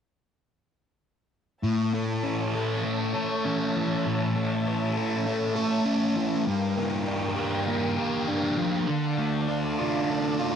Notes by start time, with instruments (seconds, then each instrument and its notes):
1.63 distorted electric guitar A2, string section C#5 E5 A5
1.94 distorted electric guitar A3
2.23 distorted electric guitar C#4
2.54 distorted electric guitar A4
2.84 distorted electric guitar A3
3.14 distorted electric guitar A4
3.45 distorted electric guitar C#4
3.76 distorted electric guitar E3
4.06 distorted electric guitar A2
4.36 distorted electric guitar A3
4.66 distorted electric guitar C#4
4.97 distorted electric guitar A4
5.26 distorted electric guitar A3
5.55 distorted electric guitar A4
5.85 distorted electric guitar C#4
6.16 distorted electric guitar E3
6.44 distorted electric guitar G2, string section A#4 F5 G5
6.77 distorted electric guitar A#3
7.07 distorted electric guitar D4
7.36 distorted electric guitar G4
7.67 distorted electric guitar A#3
7.98 distorted electric guitar G4
8.28 distorted electric guitar D4
8.57 distorted electric guitar F3
8.87 distorted electric guitar D3, string section D5 A5
9.18 distorted electric guitar A3
9.48 distorted electric guitar D4
9.78 distorted electric guitar F4
10.08 distorted electric guitar A3
10.39 distorted electric guitar F4